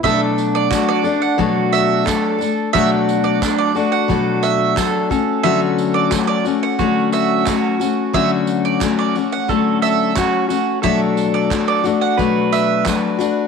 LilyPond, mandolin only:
\new Staff \with { instrumentName = "Mandolin" } { \time 4/4 \key b \minor \tempo 4 = 89 e''16 r8 d''16 r16 d''16 r16 fis''16 r8 e''8 r4 | e''16 r8 d''16 r16 d''16 r16 fis''16 r8 e''8 r4 | e''16 r8 d''16 r16 d''16 r16 fis''16 r8 e''8 r4 | e''16 r8 d''16 r16 d''16 r16 fis''16 r8 e''8 r4 |
e''16 r8 d''16 r16 d''16 r16 fis''16 r8 e''8 r4 | }